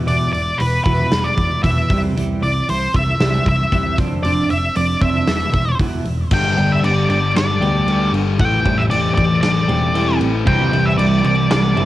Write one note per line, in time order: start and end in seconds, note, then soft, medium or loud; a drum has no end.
0.06 0.26 E1 medium
0.06 0.32 E2 medium
0.06 0.32 B2 medium
0.06 0.33 E3 medium
0.06 0.32 D5 medium
0.06 open hi-hat medium
0.33 0.52 E1 medium
0.33 0.57 E2 medium
0.33 0.58 B2 medium
0.33 0.60 D5 medium
0.33 open hi-hat soft
0.58 0.78 E1 medium
0.58 0.84 E2 medium
0.58 0.84 B2 medium
0.58 0.83 B4 medium
0.58 open hi-hat medium
0.84 1.04 E1 medium
0.84 1.10 E2 medium
0.84 1.11 B2 medium
0.84 1.11 E3 medium
0.84 1.25 B4 medium
0.84 kick medium
0.84 open hi-hat medium
1.11 1.30 E1 medium
1.11 1.36 E2 medium
1.11 1.36 B2 medium
1.11 snare loud
1.11 open hi-hat medium
1.24 1.63 D5 medium
1.37 1.56 E1 medium
1.37 1.61 E2 medium
1.37 1.61 B2 medium
1.37 kick medium
1.37 open hi-hat soft
1.63 1.82 E1 medium
1.63 1.88 E2 medium
1.63 1.89 B2 medium
1.63 1.89 E3 medium
1.63 2.00 E5 medium
1.63 kick medium
1.63 open hi-hat medium
1.89 2.08 C2 medium
1.89 2.14 C3 medium
1.89 2.15 E3 medium
1.89 2.15 G3 medium
1.89 kick medium
1.89 open hi-hat medium
2.16 2.34 C2 medium
2.16 2.41 C3 medium
2.16 2.41 E3 medium
2.16 2.41 G3 medium
2.16 open hi-hat medium
2.42 2.60 C2 medium
2.42 2.66 C3 medium
2.42 2.66 E3 medium
2.42 2.66 D5 medium
2.42 open hi-hat soft
2.69 2.87 C2 medium
2.69 2.92 C3 medium
2.69 2.92 E3 medium
2.69 2.96 C5 medium
2.69 open hi-hat medium
2.94 3.12 C2 medium
2.94 3.17 C3 medium
2.94 3.18 E3 medium
2.94 3.48 E5 loud
2.94 kick medium
3.20 3.38 C2 medium
3.20 3.44 C3 medium
3.20 3.45 E3 medium
3.20 3.45 G3 medium
3.20 snare loud
3.20 open hi-hat medium
3.46 3.64 C2 medium
3.46 3.69 C3 medium
3.46 3.70 E3 medium
3.46 3.96 E5 medium
3.46 kick medium
3.46 open hi-hat soft
3.72 4.00 C2 medium
3.72 3.96 C3 medium
3.72 3.97 E3 medium
3.72 3.97 G3 medium
3.72 kick medium
3.72 open hi-hat medium
3.98 4.16 F1 medium
3.98 4.22 F3 medium
3.98 4.23 C4 medium
3.98 4.23 D4 medium
3.98 kick medium
3.98 snare soft
3.98 open hi-hat soft
4.23 4.42 F1 medium
4.23 4.49 F3 medium
4.23 4.49 C4 medium
4.23 4.49 D4 medium
4.23 4.50 D5 medium
4.23 open hi-hat medium
4.50 4.68 F1 medium
4.50 4.73 F3 medium
4.50 4.73 C4 medium
4.50 4.74 E5 medium
4.50 open hi-hat soft
4.76 4.94 F1 medium
4.76 5.00 F3 medium
4.76 5.00 C4 medium
4.76 5.02 D5 medium
4.76 open hi-hat medium
5.01 5.19 F1 medium
5.01 5.26 F3 medium
5.01 5.26 C4 medium
5.01 5.27 D4 medium
5.01 5.76 E5 medium
5.01 kick medium
5.01 open hi-hat soft
5.27 5.46 E1 medium
5.27 5.52 E2 medium
5.27 5.52 B2 medium
5.27 5.53 E3 medium
5.27 snare loud
5.27 open hi-hat medium
5.53 5.71 E1 medium
5.53 5.77 E2 medium
5.53 5.78 B2 medium
5.53 kick medium
5.53 open hi-hat soft
5.79 5.97 E1 medium
5.79 6.04 E2 medium
5.79 6.04 B2 medium
5.79 6.05 E3 loud
5.79 kick medium
5.79 open hi-hat medium
6.05 6.23 E1 medium
6.05 6.29 E2 medium
6.05 6.29 B2 medium
6.05 open hi-hat medium
6.31 6.54 G1 medium
6.31 6.55 G2 medium
6.31 6.55 D3 medium
6.31 6.57 G3 loud
6.31 6.73 G5 loud
6.31 kick loud
6.31 crash loud
6.31 crash medium
6.56 6.81 G1 medium
6.56 6.81 G2 medium
6.56 6.81 D3 medium
6.56 6.82 G3 medium
6.56 6.83 B3 medium
6.56 6.83 D4 medium
6.56 6.84 G4 medium
6.56 crash medium
6.72 6.84 E5 medium
6.83 7.07 G1 medium
6.83 7.07 G2 medium
6.83 7.07 D3 medium
6.83 7.18 G3 medium
6.83 7.18 B3 medium
6.83 7.18 D4 medium
6.83 7.18 G4 medium
6.83 7.09 D5 medium
6.83 crash medium
7.09 7.32 G1 medium
7.09 7.33 G2 medium
7.09 7.33 D3 medium
7.09 7.36 D5 medium
7.09 crash medium
7.34 7.58 G1 medium
7.34 7.59 G2 medium
7.34 7.59 D3 medium
7.34 8.10 D5 medium
7.34 snare loud
7.34 crash medium
7.61 7.84 D2 medium
7.61 7.85 G2 medium
7.61 7.85 D3 medium
7.61 7.86 G3 medium
7.61 7.87 B3 medium
7.61 7.87 D4 medium
7.61 7.87 G4 medium
7.61 crash soft
7.86 8.10 D2 medium
7.86 8.12 G2 medium
7.86 8.12 D3 medium
7.86 8.21 G3 medium
7.86 8.12 G3 loud
7.86 8.22 B3 medium
7.86 8.22 D4 medium
7.86 8.22 G4 medium
7.86 crash medium
8.12 8.40 G1 medium
8.12 8.38 G2 medium
8.12 8.38 D3 medium
8.12 8.38 G3 loud
8.12 crash soft
8.39 8.63 A1 medium
8.39 8.64 A2 medium
8.39 8.64 E3 medium
8.39 8.64 A3 loud
8.39 8.80 G5 loud
8.39 kick loud
8.39 crash medium
8.65 8.89 A1 medium
8.65 8.89 A2 medium
8.65 8.89 E3 medium
8.65 8.91 E3 medium
8.65 8.91 G3 medium
8.65 8.91 C4 medium
8.65 8.91 G4 loud
8.65 kick medium
8.65 crash medium
8.77 8.82 E5 medium
8.90 9.15 A1 medium
8.90 9.15 A2 medium
8.90 9.15 E3 medium
8.90 9.26 E3 medium
8.90 9.26 G3 medium
8.90 9.26 C4 medium
8.90 9.26 G4 medium
8.90 9.13 D5 medium
8.90 crash medium
9.14 9.41 A1 medium
9.14 9.40 A2 medium
9.14 9.41 E3 medium
9.14 9.40 D5 medium
9.14 kick medium
9.14 crash medium
9.41 9.67 A1 medium
9.41 9.67 A2 medium
9.41 9.67 E3 medium
9.41 10.16 D5 medium
9.41 snare loud
9.41 crash medium
9.68 9.93 E1 medium
9.68 9.92 A2 medium
9.68 9.93 E3 medium
9.68 9.94 G3 medium
9.68 9.95 C4 medium
9.68 9.95 G4 medium
9.68 crash medium
9.94 10.18 E1 medium
9.94 10.19 A2 medium
9.94 10.19 E3 medium
9.94 10.29 E3 medium
9.94 10.29 G3 medium
9.94 10.20 A3 medium
9.94 10.30 C4 medium
9.94 10.30 G4 medium
9.94 crash medium
10.20 10.44 A1 medium
10.20 10.45 A2 medium
10.20 10.45 E3 medium
10.20 10.46 A3 medium
10.20 crash medium
10.46 10.70 C2 medium
10.46 10.71 C3 medium
10.46 10.71 E3 medium
10.46 10.71 G3 loud
10.46 10.72 C4 medium
10.46 10.88 G5 loud
10.46 kick loud
10.46 crash medium
10.72 10.96 C2 medium
10.72 10.96 C3 medium
10.72 10.96 E3 medium
10.72 10.98 E3 medium
10.72 10.96 G3 medium
10.72 10.99 G3 medium
10.72 10.99 C4 loud
10.72 10.99 E4 loud
10.72 crash medium
10.86 10.98 E5 medium
10.98 11.22 C2 medium
10.98 11.22 C3 medium
10.98 11.22 E3 medium
10.98 11.33 E3 medium
10.98 11.23 G3 medium
10.98 11.33 G3 medium
10.98 11.34 C4 medium
10.98 11.34 E4 medium
10.98 11.25 D5 medium
10.98 crash medium
11.23 11.48 C2 medium
11.23 11.48 C3 medium
11.23 11.48 E3 medium
11.23 11.48 G3 medium
11.23 11.50 D5 medium
11.23 crash medium
11.50 11.74 C2 medium
11.50 11.74 C3 medium
11.50 11.74 E3 medium
11.50 11.75 G3 medium
11.50 11.85 D5 medium
11.50 snare loud
11.50 crash medium
11.76 11.85 G1 medium
11.76 11.85 C3 medium
11.76 11.85 E3 medium
11.76 11.85 G3 medium
11.76 11.85 C4 medium
11.76 11.85 E4 medium
11.76 crash medium